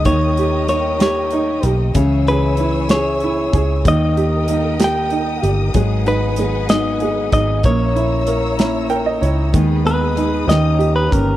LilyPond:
<<
  \new Staff \with { instrumentName = "String section" } { \time 6/8 \key gis \minor \tempo 4. = 63 << { dis'''2. | e'''2. | dis'''2.~ | dis'''2. |
e'''2. | dis'''2. | } \\ { <ais' dis'' g''>2. | <cis'' e'' gis''>2. | <ais' dis'' g''>2. | <b' fis'' gis''>2. |
<cis'' e'' ais''>2. | <gis' dis'' b''>4. <g' cis'' ais''>4. | } >> }
  \new Staff \with { instrumentName = "Clean electric guitar" } { \time 6/8 \key gis \minor cis''4 cis''8 cis''4 r8 | r8 b'4 cis''4. | dis''4. g''4 r8 | r8 b'4 dis''4 dis''8 |
cis''2~ cis''8 r8 | r8 b'4 dis''8. b'16 ais'8 | }
  \new Staff \with { instrumentName = "Upright piano" } { \time 6/8 \key gis \minor << { r2. | r2. | r2. | r2. |
r2 g''16 dis''16 cis''8 | r2. | } \\ { dis8 g'8 dis'8 g'8 dis'8 g'8 | cis8 gis'8 e'8 gis'8 e'8 gis'8 | dis8 g'8 dis'8 g'8 dis'8 g'8 | gis8 dis'8 gis8 dis'8 gis8 dis'8 |
ais8 e'8 ais'8 e'8 ais'8 e'8 | dis8 b8 dis'8 dis8 g'8 cis'8 | } >> }
  \new Staff \with { instrumentName = "Steel-string acoustic guitar" } { \time 6/8 \key gis \minor <dis g ais dis' g'>4 <g ais dis' g'>8 <dis g ais dis' g'>4 <ais dis' g'>8 | <cis e cis' e' gis'>4 <e cis' e' gis'>8 <cis e cis' e' gis'>4 <cis' e' gis'>8 | <dis g ais dis' g'>4 <g ais dis' g'>8 <dis g ais dis' g'>4 <ais dis' g'>8 | <gis, dis fis b dis' gis'>4 <fis b dis' gis'>8 <gis, dis fis b dis' gis'>4 <fis b dis' gis'>8 |
<ais cis' e' ais'>4 <ais cis' e' ais'>8 <ais cis' e' ais'>4 <cis' e' ais'>8 | <dis gis b dis' gis'>4 <gis b dis' gis'>8 <dis g ais cis' g'>4 <ais cis' g'>8 | }
  \new Staff \with { instrumentName = "Fingered electric bass" } { \clef bass \time 6/8 \key gis \minor dis,2~ dis,8 b,,8 | cis,2~ cis,8 cis,8 | dis,2~ dis,8 g,,8 | gis,,2~ gis,,8 gis,,8 |
ais,,2~ ais,,8 cis,8 | dis,4. dis,4 g,,8 | }
  \new DrumStaff \with { instrumentName = "Drums" } \drummode { \time 6/8 <hh bd>8 hh8 hh8 <hh sn>8 hh8 hh8 | <hh bd>8 hh8 hh8 <hh sn>8 hh8 <hh bd>8 | <hh bd>8 hh8 hh8 <hh sn>8 hh8 hh8 | <hh bd>8 hh8 hh8 <hh sn>8 hh8 <hh bd>8 |
<hh bd>8 hh8 hh8 <hh sn>8 hh8 hh8 | <hh bd>8 hh8 hh8 <hh sn>8 hh8 <hh bd>8 | }
>>